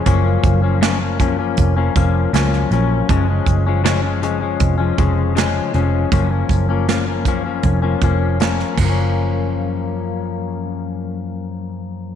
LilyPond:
<<
  \new Staff \with { instrumentName = "Clean electric guitar" } { \clef bass \time 4/4 \key fis \major \tempo 4 = 79 <fis, eis ais cis'>8. <eis ais cis'>16 <fis, eis ais cis'>16 <eis ais cis'>16 <fis, eis ais cis'>16 <eis ais cis'>8 <eis ais cis'>16 <eis ais cis'>8 <fis, eis ais cis'>8 <fis, eis ais cis'>8 | <cis eis gis cis'>16 <eis gis cis'>8 <eis gis cis'>16 <cis eis gis cis'>16 <eis gis cis'>16 <cis eis gis cis'>16 <eis gis cis'>8 <eis gis cis'>16 <cis eis gis cis'>8 <cis eis gis cis'>8 <cis eis gis cis'>8 | <fis, eis ais cis'>16 <eis ais cis'>8 <eis ais cis'>16 <fis, eis ais cis'>16 <eis ais cis'>16 <fis, eis ais cis'>16 <eis ais cis'>8 <eis ais cis'>16 <eis ais cis'>8 <eis ais cis'>8 <fis, eis ais cis'>8~ | <fis, eis ais cis'>1 | }
  \new Staff \with { instrumentName = "Picked electric bass" } { \clef bass \time 4/4 \key fis \major fis,,8 fis,,4. eis,,8 eis,,8 cis,8 ais,,8 | fis,,8 fis,,4. eis,,8 eis,,4 eis,,8 | fis,,8 fis,,4. eis,,8 eis,,4 fis,,8~ | fis,,1 | }
  \new DrumStaff \with { instrumentName = "Drums" } \drummode { \time 4/4 <hh bd>8 <hh bd>8 <hh sn>8 <hh bd>8 <hh bd>8 <hh bd>8 <hh sn>16 sn16 hh8 | <hh bd>8 <hh bd>8 <hh sn>8 hh8 <hh bd>8 <hh bd>8 <hh sn>8 hh8 | <hh bd>8 <hh bd>8 <hh sn>8 <hh bd>8 <hh bd>8 <hh bd>8 <hh sn>16 sn16 <cymc bd>8 | r4 r4 r4 r4 | }
>>